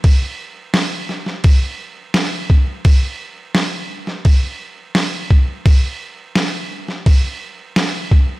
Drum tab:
CC |x---x---x---x---|x---x---x---x---|x---x---x---x---|
SD |----o-oo----o---|----o--o----o---|----o--o----o---|
BD |o-------o-----o-|o-------o-----o-|o-------o-----o-|